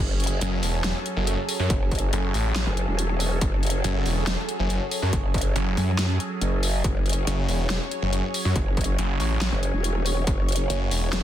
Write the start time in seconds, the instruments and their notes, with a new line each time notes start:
Already playing: analog synth pad F#3 C#4 G#4
0.00 wobble bass F#1, analog synth pad A4
0.20 closed hi-hat
0.24 closed hi-hat
0.27 closed hi-hat
0.41 detuned saw bass F#1, closed hi-hat
0.63 detuned saw bass E1, open hi-hat
0.84 snare, closed hi-hat
1.06 closed hi-hat
1.17 detuned saw bass F#1
1.27 closed hi-hat
1.49 open hi-hat
1.60 detuned saw bass F#2
1.70 wobble bass F#1, kick, closed hi-hat
1.91 kick, closed hi-hat
1.95 closed hi-hat
1.99 closed hi-hat
2.13 detuned saw bass F#1, closed hi-hat
2.34 detuned saw bass A1, open hi-hat
2.56 snare, closed hi-hat
2.67 wobble bass F#1
2.77 closed hi-hat
2.88 wobble bass E1
2.99 closed hi-hat
3.20 open hi-hat
3.41 wobble bass F#1, kick, closed hi-hat
3.63 closed hi-hat
3.67 closed hi-hat
3.70 closed hi-hat
3.84 detuned saw bass F#1, closed hi-hat
4.06 detuned saw bass E1, open hi-hat
4.27 snare, closed hi-hat
4.49 closed hi-hat
4.60 detuned saw bass F#1
4.70 closed hi-hat
4.91 open hi-hat
5.02 detuned saw bass F#2
5.13 wobble bass F#1, kick, closed hi-hat
5.34 kick, closed hi-hat
5.38 closed hi-hat
5.41 closed hi-hat
5.56 detuned saw bass F#1, closed hi-hat
5.77 wobble bass F#2, open hi-hat
5.99 snare, closed hi-hat
6.20 closed hi-hat
6.41 wobble bass F#1, closed hi-hat
6.63 open hi-hat
6.84 wobble bass F#1, analog synth pad C#5, kick, closed hi-hat
7.06 closed hi-hat
7.09 closed hi-hat
7.13 closed hi-hat
7.27 detuned saw bass F#1, closed hi-hat
7.49 detuned saw bass E1, open hi-hat
7.70 snare, closed hi-hat
7.91 closed hi-hat
8.02 detuned saw bass F#1
8.13 closed hi-hat
8.34 open hi-hat
8.45 detuned saw bass F#2
8.56 wobble bass F#1, kick, closed hi-hat
8.77 kick, closed hi-hat
8.81 closed hi-hat
8.84 closed hi-hat
8.99 detuned saw bass F#1, closed hi-hat
9.20 detuned saw bass A1, open hi-hat
9.41 snare, closed hi-hat
9.52 wobble bass F#1
9.63 closed hi-hat
9.74 wobble bass E1
9.84 closed hi-hat
10.06 open hi-hat
10.27 wobble bass F#1, kick, closed hi-hat
10.49 closed hi-hat
10.52 closed hi-hat
10.56 closed hi-hat
10.70 detuned saw bass F#1, closed hi-hat
10.91 detuned saw bass E1, open hi-hat
11.13 snare, closed hi-hat